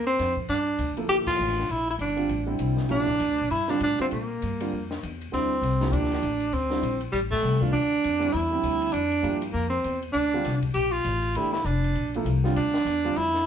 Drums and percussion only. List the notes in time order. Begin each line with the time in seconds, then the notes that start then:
0.19 snare, hi-hat pedal, ride
0.37 kick
0.48 ride
0.79 hi-hat pedal, ride
0.97 ride
1.09 ride
1.27 kick, crash
1.38 hi-hat pedal
1.49 snare
1.57 snare, ride
1.69 ride
1.99 hi-hat pedal, ride
2.17 ride
2.29 ride
2.59 hi-hat pedal, ride
2.77 snare
2.89 ride
3.08 kick
3.20 hi-hat pedal, ride
3.38 ride
3.50 ride
3.68 snare, ride
3.80 hi-hat pedal, ride
3.99 ride
4.11 ride
4.42 hi-hat pedal, ride
4.60 ride
4.91 snare
5.03 hi-hat pedal, ride
5.21 ride
5.33 ride
5.63 hi-hat pedal, ride
5.81 snare, ride
5.93 ride
6.04 snare
6.12 snare, ride
6.23 hi-hat pedal, ride
6.40 ride
6.53 ride
6.70 snare
6.83 hi-hat pedal, ride
7.01 ride
7.13 ride
7.32 kick, crash
7.44 hi-hat pedal
7.62 kick, ride
7.74 ride
8.04 hi-hat pedal, ride
8.22 ride
8.34 ride
8.64 hi-hat pedal, ride
8.82 ride
8.94 ride
9.12 ride
9.24 hi-hat pedal, ride
9.42 ride
9.84 hi-hat pedal, ride
10.02 ride
10.14 ride
10.45 snare, hi-hat pedal, ride
10.62 kick, ride
10.74 ride
11.05 hi-hat pedal, ride
11.22 ride
11.35 ride
11.53 snare
11.66 hi-hat pedal, ride
11.84 ride
11.95 ride
12.14 ride
12.26 hi-hat pedal, ride
12.44 snare
12.56 ride
12.74 snare
12.86 hi-hat pedal, ride
13.16 ride
13.34 snare